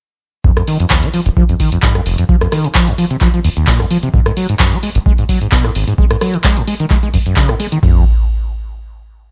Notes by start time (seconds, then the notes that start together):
0.44 F2, kick
0.57 F2, cross-stick, closed hi-hat
0.68 D#3, open hi-hat
0.80 F2, closed hi-hat
0.90 D#2, kick, clap
1.03 F3, closed hi-hat
1.14 F3, open hi-hat
1.26 F1, closed hi-hat
1.37 F3, kick
1.49 F2, closed hi-hat
1.60 D#3, kick, open hi-hat
1.72 F2, closed hi-hat
1.82 G#2, kick, clap
1.95 F2, cross-stick, closed hi-hat
2.06 F1, open hi-hat
2.18 F2, closed hi-hat
2.29 F3, kick
2.41 F2, cross-stick, closed hi-hat
2.52 D#3, cross-stick, open hi-hat
2.64 C3, closed hi-hat
2.75 F3, kick, clap
2.88 F2, closed hi-hat
2.98 F3, open hi-hat
3.11 C3, closed hi-hat
3.21 F3, kick, clap
3.34 F3, closed hi-hat
3.44 D#2, open hi-hat
3.57 D#2, closed hi-hat
3.67 A#2, kick, clap
3.80 F2, cross-stick, closed hi-hat
3.91 F3, open hi-hat
4.03 C3, closed hi-hat
4.14 G#2, kick
4.26 G#2, cross-stick, closed hi-hat
4.37 F#3, open hi-hat
4.49 G#2, closed hi-hat
4.59 F#2, kick, clap
4.72 G#3, closed hi-hat
4.83 G#3, open hi-hat
4.95 G#1, closed hi-hat
5.06 G#3, kick
5.18 G#2, closed hi-hat
5.29 F#3, kick, open hi-hat
5.41 G#2, closed hi-hat
5.52 B2, kick, clap
5.64 G#2, cross-stick, closed hi-hat
5.75 G#1, open hi-hat
5.88 G#2, closed hi-hat
5.98 G#3, kick
6.11 G#2, cross-stick, closed hi-hat
6.21 F#3, cross-stick, open hi-hat
6.34 D#3, closed hi-hat
6.44 G#3, kick, clap
6.57 G#2, closed hi-hat
6.67 G#3, open hi-hat
6.80 D#3, closed hi-hat
6.90 G#3, kick, clap
7.03 G#3, closed hi-hat
7.14 F#2, kick, open hi-hat
7.26 F#2, closed hi-hat
7.36 C#3, kick, clap
7.49 G#2, cross-stick, closed hi-hat
7.60 G#3, open hi-hat
7.72 D#3, closed hi-hat
7.83 F2, kick, floor tom, crash